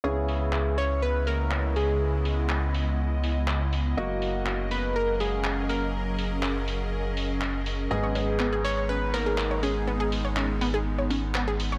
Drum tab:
HH |-o-o-o-o|-o-o-o-o|-o-o-o-o|-o-o-o-o|
CP |--x---x-|--x---x-|--x---x-|--x---x-|

HH |-o-o-o-o|-o-o-o-o|
CP |--x---x-|--x---x-|